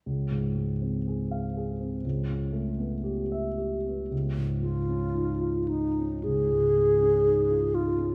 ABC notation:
X:1
M:4/4
L:1/16
Q:1/4=60
K:Db
V:1 name="Alto flute"
z16 | z2 F4 E2 A6 F2 |]
V:2 name="Grand piano"
D,, A,, A, C A f A C ^C,, ^C, =A, =B, =G =e G B, | D,, A,, A, D E F E D D,, A,, A, D E F E D |]